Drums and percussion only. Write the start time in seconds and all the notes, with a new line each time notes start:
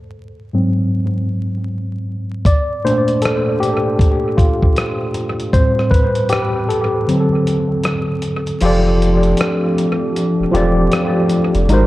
2.45 kick, closed hi-hat
2.87 closed hi-hat
3.08 closed hi-hat
3.22 cross-stick, closed hi-hat
3.63 closed hi-hat
3.99 kick, closed hi-hat
4.38 kick, closed hi-hat
4.63 kick
4.76 cross-stick, closed hi-hat
5.14 closed hi-hat
5.40 closed hi-hat
5.53 kick, closed hi-hat
5.79 cross-stick
5.91 kick, closed hi-hat
6.15 closed hi-hat
6.29 cross-stick, closed hi-hat
6.70 closed hi-hat
7.09 closed hi-hat
7.47 closed hi-hat
7.84 cross-stick, closed hi-hat
8.22 closed hi-hat
8.47 closed hi-hat
8.61 closed hi-hat, crash
9.02 closed hi-hat
9.23 closed hi-hat
9.37 cross-stick, closed hi-hat
9.78 closed hi-hat
10.16 closed hi-hat
10.55 closed hi-hat
10.92 cross-stick, closed hi-hat
11.29 closed hi-hat
11.55 closed hi-hat
11.69 closed hi-hat